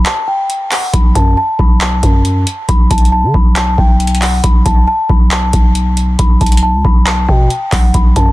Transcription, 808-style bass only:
0.94 1.15 B1 loud
1.15 1.36 F#2 loud
1.59 2.01 B1 loud
2.03 2.45 F#2 loud
2.69 2.90 B1 loud
2.91 3.25 B1 loud
3.23 3.34 D3 loud
3.34 3.76 B1 loud
3.78 4.41 B1 loud
4.44 4.65 B1 loud
4.66 4.87 B1 loud
5.09 5.52 B1 loud
5.53 6.16 B1 loud
6.19 6.40 B1 loud
6.41 6.75 B1 loud
6.74 6.84 C#2 loud
6.85 7.27 B1 loud
7.29 7.50 B2 loud
7.72 7.93 B1 loud
7.94 8.15 B1 loud
8.16 8.32 F#2 loud

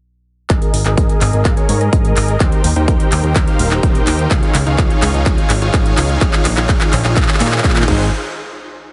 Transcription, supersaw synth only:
0.50 0.77 G#4 medium
0.50 0.77 A#4 medium
0.50 0.77 D#5 medium
0.86 0.96 G#4 medium
0.86 0.96 A#4 medium
0.86 0.96 D#5 medium
0.97 1.42 A#4 medium
1.45 1.54 G#4 medium
1.57 1.78 G#4 medium
1.57 1.78 A#4 medium
1.57 1.78 C#5 medium
1.81 2.37 G#4 medium
1.81 2.38 A#4 medium
1.81 2.38 D#5 medium
2.40 2.68 D#4 medium
2.40 2.68 G4 medium
2.40 2.68 C5 medium
2.40 2.68 G5 medium
2.76 2.86 D#4 medium
2.76 2.86 G4 medium
2.76 2.86 A#4 medium
2.76 2.86 C5 medium
2.76 2.86 G5 medium
2.88 3.33 D#4 loud
2.88 3.33 G4 medium
2.88 3.33 A#4 medium
2.88 3.33 C5 medium
2.88 3.33 G5 loud
3.36 3.45 A#4 medium
3.36 3.45 C5 medium
3.47 3.68 D#4 medium
3.47 3.68 G4 medium
3.47 3.68 A#4 medium
3.47 3.68 C5 medium
3.47 3.68 F5 medium
3.71 4.28 D#4 medium
3.71 4.28 G4 medium
3.71 4.28 A#4 medium
3.71 4.28 C5 medium
3.71 4.28 G5 medium
4.67 4.77 D#4 medium
4.67 4.77 F4 medium
4.67 4.77 G#4 medium
4.67 4.77 C#5 medium
4.67 4.77 F5 medium
5.26 5.53 D#4 medium
5.26 5.53 F4 medium
5.26 5.53 G#4 medium
5.62 5.72 D#4 medium
5.62 5.72 F4 medium
5.62 5.72 G#4 medium
5.62 5.72 C#5 medium
5.62 5.72 F5 medium
5.74 6.18 D#4 medium
5.74 6.18 F4 medium
5.74 6.18 G#4 medium
5.74 6.18 C#5 medium
6.21 6.49 G#4 medium
6.57 6.67 D#4 medium
6.57 6.67 F4 medium
6.57 6.67 G#4 medium
6.57 6.67 C#5 medium
6.57 6.67 F5 medium
6.69 6.96 D#4 medium
6.69 6.96 G#4 medium
6.69 6.96 C#5 medium
6.69 6.96 F5 medium
7.05 7.15 D#4 medium
7.05 7.15 F4 medium
7.05 7.15 G#4 medium
7.05 7.15 C#5 medium
7.05 7.15 F5 medium
7.16 7.38 D#4 medium
7.40 7.62 D#4 medium
7.40 7.62 F4 medium
7.40 7.62 G#4 medium
7.40 7.62 C#5 medium
7.40 7.62 F5 medium
7.64 7.86 D#4 medium
7.64 7.86 G#4 medium
7.88 8.06 D#4 medium
7.88 8.06 G#4 medium
7.88 8.06 C5 medium

